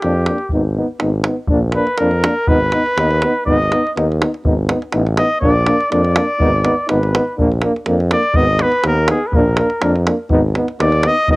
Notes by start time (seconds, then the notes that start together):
0.01 F2 A#3 D4 G4, davul high
0.26 A#3 D4, davul high
0.38 davul high
0.49 G#1 B3 D#4, davul low
0.76 B3 D#4
1.00 G#1 B3 D#4, davul high
1.24 B3 D#4, davul high
1.47 A#1 A#3 D4, davul low
1.72 A#3 D4 B4, davul high
1.87 davul high
1.98 F2 A#3 D4 A#4, davul high
2.11 davul high
2.23 A#3 D4, davul high
2.47 G#1 B3 D#4 B4, davul low
2.72 B3 D#4, davul high
2.86 davul high
2.97 D#2 B3 D#4, davul high
3.11 davul high
3.22 B3 D#4, davul high
3.46 G#1 B3 D#4 D#5, davul low
3.62 davul high
3.72 B3 D#4, davul high
3.87 davul high
3.95 D#2 B3 D#4, davul high
4.12 davul high
4.20 B3 D#4, davul high
4.34 davul high
4.44 G#1 B3 D#4, davul low
4.68 B3 D#4, davul high
4.82 davul high
4.92 A1 B3 D#4, davul high
5.06 davul high
5.17 B3 D#4 D#5, davul high
5.41 A#1 A#3 D4 D5, davul low
5.67 A#3 D4, davul high
5.81 davul high
5.91 F2 A#3 D4 D5, davul high
6.05 davul high
6.16 A#3 D4, davul high
6.40 G#1 B3 D#4, davul low
6.64 B3 D#4, davul high
6.88 G#1 B3 D#4 B4, davul high
7.03 davul high
7.13 B3 D#4, davul high
7.38 A#1 A#3 D4, davul low
7.52 davul high
7.62 A#3 D4, davul high
7.76 davul high
7.86 F2 A#3 D4, davul high
8.00 davul high
8.11 A#3 D4 D5, davul high
8.23 davul high
8.34 G#1 B3 D#4 D#5, davul low
8.59 B3 D#4 B4, davul high
8.72 davul high
8.84 D#2 B3 D#4 A#4, davul high
9.08 B3 D#4 G#4, davul high
9.27 B4
9.33 A#1 A#3 D4 A#4, davul low
9.57 A#3 D4, davul high
9.70 davul high
9.82 F2 A#3 D4, davul high
9.96 davul high
10.05 A#3 D4, davul high
10.30 G#1 B3 D#4, davul low
10.55 B3 D#4, davul high
10.68 davul high
10.79 D#2 B3 D#4 D5, davul high
10.92 davul high
11.03 B3 D#4, davul high
11.07 D#5
11.28 G#1 B3 D#4 D#5, davul low